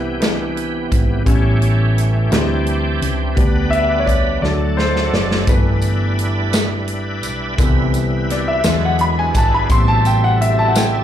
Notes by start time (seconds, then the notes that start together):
Already playing: C2 C3 E3 B3 D4 E4 G4
0.20 E3 B3 D4, snare, closed hi-hat
0.57 closed hi-hat
0.92 G#1, kick, closed hi-hat
1.25 A1 E3 G3 B3 C#4 F#4, kick, closed hi-hat
1.29 A3
1.35 G4
1.62 closed hi-hat
1.98 closed hi-hat
2.31 D2 E3 G3 C4 D4 E4 F#4, snare, closed hi-hat
2.39 G4
2.66 closed hi-hat
3.02 C#2, closed hi-hat
3.35 D2 G3 B3 D4 B4, kick, closed hi-hat
3.71 E5, closed hi-hat
4.00 C#5
4.06 D5, kick, closed hi-hat
4.42 D2 F#3 A3 D4 A4 D5, snare
4.77 C5, snare
4.96 snare
5.13 F#1 D5, snare
5.31 snare
5.47 G1 E3 G3 A3 B3 D4 E4 B4, kick, closed hi-hat, tambourine
5.82 closed hi-hat, tambourine
6.19 closed hi-hat
6.53 snare, closed hi-hat, tambourine
6.88 closed hi-hat
7.23 B1, closed hi-hat, tambourine
7.56 C2 C3 D3 E3 G3 B3 E4 B4, kick, closed hi-hat, tambourine
7.94 closed hi-hat, tambourine
8.30 D5, snare, closed hi-hat
8.48 E5
8.63 E2 D3 F#3 G#3 D4 E4 B4, snare, closed hi-hat, tambourine
8.85 F#5
8.99 B5, closed hi-hat
9.19 G#5
9.34 G#1 A5, kick, closed hi-hat, tambourine
9.54 B5
9.69 A1 C3 G3 B3 E4 A4 C6, kick, closed hi-hat, tambourine
9.88 A5
10.05 G5, closed hi-hat, tambourine
10.24 F#5
10.41 E5, closed hi-hat
10.59 A5
10.68 F#5
10.75 G5, snare, closed hi-hat, tambourine